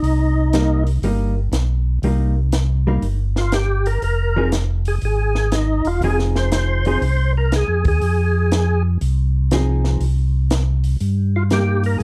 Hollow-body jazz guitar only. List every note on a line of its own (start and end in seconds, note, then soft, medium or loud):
0.55 0.84 G3 soft
0.55 0.84 A#3 medium
0.55 0.85 D#4 medium
1.04 1.34 G3 medium
1.04 1.34 A#3 medium
1.04 1.34 D#4 medium
2.04 2.34 G3 medium
2.04 2.34 A#3 medium
2.04 2.34 D#4 medium
2.87 3.02 G3 medium
2.87 3.02 A#3 medium
2.87 3.03 D#4 medium
4.36 4.52 F3 medium
4.36 4.52 C4 medium
4.36 4.52 D#4 medium
4.36 4.52 G#4 medium
6.04 6.80 F3 medium
6.04 6.80 C4 medium
6.04 6.80 D#4 medium
6.04 6.80 G#4 medium
6.86 7.01 F3 medium
6.86 7.01 C4 medium
6.86 7.02 D#4 medium
6.86 7.02 G#4 medium
9.52 10.02 F3 medium
9.52 10.02 C4 medium
9.52 10.02 D#4 medium
9.52 10.02 G#4 medium
11.52 12.01 G3 soft
11.52 12.02 A#3 medium
11.52 12.02 D#4 medium